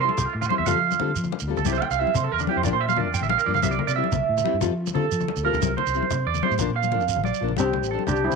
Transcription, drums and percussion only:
0.09 high conga medium
0.18 low conga medium
0.18 shekere loud
0.42 low conga medium
0.42 shekere medium
0.50 high conga medium
0.50 low conga soft
0.66 low conga medium
0.66 shekere loud
0.91 high conga medium
0.91 low conga soft
0.91 shekere medium
1.00 low conga medium
1.08 low conga soft
1.16 shekere medium
1.24 low conga medium
1.24 shekere soft
1.32 high conga medium
1.40 low conga soft
1.40 shekere medium
1.49 low conga soft
1.57 low conga medium
1.57 shekere soft
1.65 high conga medium
1.65 shekere medium
1.82 low conga medium
1.91 shekere medium
2.07 high conga medium
2.14 low conga medium
2.14 shekere medium
2.39 low conga medium
2.39 shekere medium
2.47 high conga medium
2.47 low conga soft
2.63 low conga medium
2.63 shekere loud
2.89 high conga medium
2.89 low conga soft
2.89 shekere medium
2.97 low conga medium
3.05 low conga soft
3.14 shekere medium
3.21 low conga medium
3.21 shekere soft
3.29 high conga loud
3.38 low conga soft
3.38 shekere medium
3.46 low conga soft
3.54 low conga medium
3.54 shekere soft
3.63 high conga loud
3.63 shekere medium
3.72 shekere soft
3.79 low conga medium
3.88 shekere medium
4.04 high conga medium
4.12 low conga medium
4.12 shekere medium
4.37 low conga medium
4.37 shekere medium
4.46 high conga medium
4.46 low conga soft
4.61 low conga loud
4.61 shekere medium
4.86 high conga medium
4.86 low conga soft
4.86 shekere medium
4.95 low conga medium
5.04 low conga soft
5.12 shekere loud
5.20 low conga medium
5.20 shekere soft
5.28 high conga loud
5.36 low conga soft
5.36 shekere medium
5.46 low conga soft
5.53 low conga medium
5.53 shekere soft
5.62 high conga loud
5.62 shekere loud
5.78 low conga medium
5.87 shekere medium
5.94 shekere soft
6.02 high conga medium
6.11 low conga medium
6.11 shekere loud
6.27 low conga soft
6.34 low conga medium
6.34 shekere medium
6.43 high conga medium
6.51 shekere soft
6.59 low conga medium
6.59 shekere medium
6.76 low conga soft
6.83 high conga medium
6.83 shekere medium
6.92 low conga medium
7.00 low conga soft
7.00 shekere soft
7.08 low conga soft
7.08 shekere medium
7.16 low conga medium
7.24 high conga medium
7.24 shekere soft
7.34 shekere medium
7.48 low conga medium
7.57 high conga medium
7.57 shekere medium
7.73 low conga medium
7.83 shekere medium
7.99 high conga medium
8.07 low conga medium
8.07 shekere medium
8.16 shekere soft
8.31 low conga medium
8.31 shekere medium

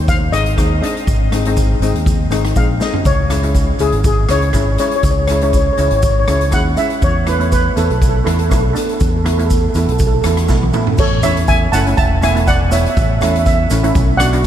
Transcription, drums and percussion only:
0.08 kick loud
0.08 closed hi-hat medium
0.08 shaker medium
0.33 cross-stick medium
0.33 closed hi-hat medium
0.33 shaker medium
0.46 closed hi-hat medium
0.58 kick medium
0.58 cross-stick medium
0.58 closed hi-hat medium
0.58 shaker medium
0.83 closed hi-hat medium
0.97 closed hi-hat medium
1.07 kick loud
1.07 closed hi-hat medium
1.07 shaker medium
1.32 cross-stick medium
1.32 closed hi-hat medium
1.32 shaker medium
1.45 closed hi-hat medium
1.57 kick medium
1.57 closed hi-hat medium
1.57 shaker medium
1.82 closed hi-hat medium
1.82 shaker medium
1.95 closed hi-hat medium
2.06 kick loud
2.06 closed hi-hat medium
2.06 shaker medium
2.31 cross-stick medium
2.31 closed hi-hat medium
2.31 shaker medium
2.45 cross-stick medium
2.45 closed hi-hat medium
2.56 kick medium
2.56 closed hi-hat medium
2.56 shaker medium
2.81 snare medium
2.81 shaker medium
2.94 floor tom medium
3.05 kick loud
3.05 closed hi-hat medium
3.05 shaker medium
3.30 cross-stick medium
3.30 closed hi-hat medium
3.30 shaker medium
3.43 closed hi-hat medium
3.54 kick medium
3.54 closed hi-hat medium
3.54 shaker medium
3.79 closed hi-hat medium
3.79 shaker medium
3.92 closed hi-hat medium
4.04 kick loud
4.04 closed hi-hat medium
4.04 shaker medium
4.29 cross-stick medium
4.29 closed hi-hat medium
4.29 shaker medium
4.42 closed hi-hat medium
4.53 kick medium
4.53 cross-stick medium
4.53 closed hi-hat medium
4.53 shaker medium
4.78 closed hi-hat medium
4.78 shaker medium
4.91 closed hi-hat medium
5.03 kick loud
5.03 closed hi-hat medium
5.03 shaker medium
5.28 cross-stick medium
5.28 closed hi-hat medium
5.28 shaker medium
5.41 closed hi-hat medium
5.53 kick medium
5.53 closed hi-hat medium
5.53 shaker medium
5.78 closed hi-hat medium
5.78 shaker medium
5.91 closed hi-hat medium
6.02 kick loud
6.02 closed hi-hat medium
6.02 shaker medium
6.28 cross-stick medium
6.28 closed hi-hat medium
6.28 shaker medium
6.41 closed hi-hat medium
6.52 kick medium
6.52 cross-stick medium
6.52 closed hi-hat medium
6.52 shaker medium
6.77 closed hi-hat medium
6.77 shaker medium
6.90 closed hi-hat medium
7.02 kick loud
7.02 closed hi-hat medium
7.02 shaker medium
7.27 cross-stick medium
7.27 closed hi-hat medium
7.27 shaker medium
7.41 closed hi-hat medium
7.52 kick medium
7.52 closed hi-hat medium
7.52 shaker medium
7.77 closed hi-hat medium
7.77 shaker medium
7.90 closed hi-hat soft
8.02 kick medium
8.02 closed hi-hat medium
8.02 shaker medium
8.27 cross-stick medium
8.27 closed hi-hat medium
8.39 closed hi-hat medium
8.51 kick medium
8.51 cross-stick medium
8.51 closed hi-hat medium
8.51 shaker medium
8.76 closed hi-hat medium
8.76 shaker medium
8.89 closed hi-hat medium
9.00 kick medium
9.00 closed hi-hat medium
9.00 shaker medium
9.26 cross-stick medium
9.26 closed hi-hat medium
9.39 closed hi-hat medium
9.50 kick medium
9.50 closed hi-hat medium
9.50 shaker medium
9.74 closed hi-hat medium
9.74 shaker medium
9.89 closed hi-hat medium
9.99 kick loud
9.99 closed hi-hat medium
9.99 shaker medium
10.24 cross-stick medium
10.24 closed hi-hat medium
10.24 shaker medium
10.37 cross-stick medium
10.37 closed hi-hat medium
10.48 kick medium
10.48 snare medium
10.48 shaker medium
10.63 high tom medium
10.73 mid tom medium
10.73 shaker medium
10.87 floor tom medium
10.98 kick loud
10.98 crash loud
10.98 shaker medium
11.23 cross-stick medium
11.23 closed hi-hat medium
11.23 shaker medium
11.36 closed hi-hat medium
11.36 shaker soft
11.47 kick medium
11.47 closed hi-hat medium
11.47 shaker medium
11.73 closed hi-hat medium
11.73 shaker loud
11.86 closed hi-hat medium
11.86 shaker soft
11.97 kick loud
11.97 closed hi-hat medium
11.97 shaker medium
12.22 cross-stick medium
12.22 closed hi-hat medium
12.22 shaker medium
12.36 closed hi-hat medium
12.36 shaker soft
12.47 kick medium
12.47 closed hi-hat medium
12.47 shaker medium
12.72 closed hi-hat medium
12.72 shaker medium
12.86 closed hi-hat medium
12.97 kick loud
12.97 closed hi-hat medium
12.97 shaker medium
13.21 cross-stick medium
13.21 closed hi-hat medium
13.21 shaker medium
13.35 closed hi-hat medium
13.35 shaker soft
13.46 kick medium
13.46 closed hi-hat medium
13.46 shaker medium
13.70 closed hi-hat medium
13.70 shaker medium
13.84 closed hi-hat medium
13.84 shaker soft
13.95 kick loud
13.95 closed hi-hat medium
13.95 shaker medium
14.20 cross-stick medium
14.20 closed hi-hat medium
14.20 shaker medium
14.33 closed hi-hat medium
14.33 shaker soft

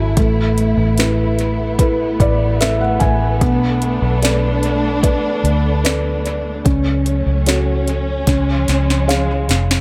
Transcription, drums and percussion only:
0.17 kick loud
0.17 closed hi-hat medium
0.58 closed hi-hat medium
0.98 snare medium
0.98 closed hi-hat medium
1.39 closed hi-hat medium
1.79 kick medium
1.79 closed hi-hat medium
2.20 kick medium
2.20 closed hi-hat medium
2.61 snare loud
2.61 closed hi-hat medium
3.00 kick medium
3.00 closed hi-hat medium
3.41 kick loud
3.41 closed hi-hat medium
3.82 closed hi-hat medium
4.23 snare loud
4.23 closed hi-hat medium
4.63 closed hi-hat medium
5.03 kick medium
5.03 closed hi-hat medium
5.45 closed hi-hat medium
5.85 snare loud
5.85 closed hi-hat medium
6.26 closed hi-hat medium
6.66 kick loud
6.66 closed hi-hat medium
7.06 closed hi-hat medium
7.46 snare medium
7.46 closed hi-hat medium
7.88 closed hi-hat medium
8.27 kick medium
8.27 snare medium
8.27 closed hi-hat medium
8.68 snare medium
8.68 closed hi-hat medium
8.90 snare medium
9.09 snare medium
9.09 closed hi-hat medium
9.49 snare medium
9.49 closed hi-hat medium
9.71 snare medium

